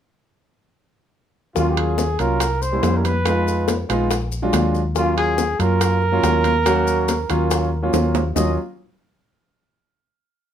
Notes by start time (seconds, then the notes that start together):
1.55 D#2 F#3 A#3 C#4 F4, high bongo, high conga, maracas
1.70 G4
1.77 G#4, high conga, high timbale
1.98 high bongo, high conga, low timbale, maracas
2.19 C2 F#3 A#3 C#4 F4 A#4, high bongo, high conga, high timbale, maracas
2.40 high bongo, high conga, high timbale, maracas
2.62 C5, high bongo, high conga, maracas
2.72 G3 A#3 C#4 E4
2.83 F2, high bongo, low bongo, high conga, high timbale, low timbale, maracas
2.97 A#4
3.04 B4, high bongo, high conga, high timbale, maracas
3.25 G#3 B3 D#4 F4, high bongo, high conga, high timbale, maracas
3.47 high bongo, high conga, maracas
3.68 high bongo, high conga, high timbale, low timbale, maracas
3.89 A#1 G#3 B3 D#4 F4, high bongo, high conga, high timbale, maracas
4.11 high bongo, high conga, high timbale, maracas
4.32 high conga, maracas
4.42 F#3 G#3 D4 F4
4.53 D#2, high bongo, low bongo, high conga, high timbale, low timbale, maracas
4.75 high bongo, high conga, maracas
4.95 F#3 A#3 C#4 F4, high bongo, high conga, maracas
5.17 G#4, high conga, high timbale
5.38 high bongo, high conga, low timbale, maracas
5.59 F#2 F#3 A#3 C#4 F4 A#4, high bongo, high conga, high timbale, maracas
5.81 high bongo, high conga, high timbale, maracas
6.02 high bongo, high conga
6.12 F#3 A#3 C#4 F4
6.23 D#2, high bongo, low bongo, high conga, high timbale, low timbale, maracas
6.44 high bongo, high conga, high timbale, maracas
6.66 F#3 A#3 C#4 F#4, high bongo, high timbale, maracas
6.87 high bongo, high conga, maracas
7.08 high bongo, high conga, high timbale, low timbale, maracas
7.29 D#2 F#3 A#3 C#4 F4, high bongo, high conga, high timbale, maracas
7.51 high bongo, high conga, high timbale, maracas
7.73 high conga
7.82 F#3 A#3 C#4 F4
7.93 D#2, high bongo, high conga, high timbale, maracas
8.15 low bongo, low timbale, maracas
8.36 D#2 F#3 A#3 C#4 F4 D#5, low bongo, low conga, low timbale, maracas